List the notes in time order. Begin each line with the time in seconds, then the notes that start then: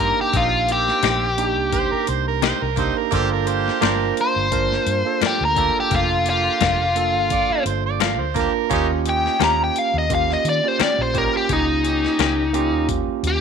Already playing: G2 A#3 D4 A#4
0.00 C4 D#4 F4 G4
0.21 G4
0.33 A#1 A#3 C4 D#4, kick, closed hi-hat
0.37 F4
0.67 A#3 C4, closed hi-hat
0.72 G4
0.88 snare
1.03 A#1 C3 A#3 D#4 G4, snare, closed hi-hat
1.37 A#3 D4 D#4 G4, closed hi-hat
1.57 C2
1.73 C5, kick, closed hi-hat
1.92 A#4, muted fingered electric bass stroke
2.07 C2 C5, closed hi-hat
2.28 A#4
2.42 C3 A#3 D#4 G4 C5, snare, closed hi-hat
2.62 C2 A#4
2.76 A#3 C4 D4 D#4 G4 C5, kick, closed hi-hat
2.98 A#4
3.11 G1 A#3 D4 F4 G4 A4 C5, kick, closed hi-hat
3.32 A#4
3.45 A#3 F4 G4 C5, closed hi-hat
3.68 snare
3.81 G1 G2 F3 A#3 D4 F4 A#4 C5, snare, closed hi-hat
4.17 C5, closed hi-hat
4.36 G1
4.51 A#3 D4 F4 A#4, kick, closed hi-hat
4.72 snare
4.86 G2, closed hi-hat
5.05 A#3 D4 F4 A4
5.21 G2 F3 A#3 D4, muted fingered electric bass stroke, snare, closed hi-hat
5.27 G4
5.41 D2
5.45 A#4
5.55 A#3 D4 F4 G4 A4, kick, closed hi-hat
5.80 G4
5.91 F1 A#3 F4 G4, kick, closed hi-hat
5.96 F4
6.25 A#3 F4 G4, closed hi-hat
6.30 F4
6.61 F1 G2 F3 A#3 D4, kick, snare, closed hi-hat
6.96 A#3 D4 F4 A4, closed hi-hat
7.15 G1
7.30 D5, kick, closed hi-hat
7.50 F5, muted fingered electric bass stroke
7.65 G1 C5, closed hi-hat
7.86 D5
8.00 G2 F3 A#3 D4 F5, snare, closed hi-hat
8.20 D2 C5
8.35 A#3 D4 F4 G4 A#4, kick, closed hi-hat
8.69 D#2 A#3 C#4 D#4 F4 G4, kick, closed hi-hat
9.05 C#4 D#4 G4, closed hi-hat
9.09 G5
9.26 snare
9.39 D#2 D#3 A#3 C#4 F4 G4, snare, closed hi-hat
9.44 A#5
9.64 G5
9.76 F5, closed hi-hat
9.94 D#2
9.98 D#5
10.10 A#3 C#4 F4 G4, kick, closed hi-hat
10.15 F5
10.31 D#5, snare
10.44 D#3, closed hi-hat
10.49 D5
10.63 A#3 C#4 F4 G4
10.68 C5
10.80 D#3 A#3 C#4 G4, muted fingered electric bass stroke, snare, closed hi-hat
10.84 D5
10.98 A#1 C5
11.14 A#3 C#4 D#4 F4 G4, kick, closed hi-hat
11.18 A#4
11.37 G4
11.49 C#2 C#4 D#4 G4, kick, closed hi-hat
11.53 D#4
11.83 C#4 D#4 G4, closed hi-hat
12.05 snare
12.19 C#2 D#3 A#3 C#4 G4, snare, closed hi-hat
12.53 A#3 C#4 F4 G4, closed hi-hat
12.73 D#2
12.89 kick, closed hi-hat
13.08 muted fingered electric bass stroke
13.23 D#2, closed hi-hat
13.27 G4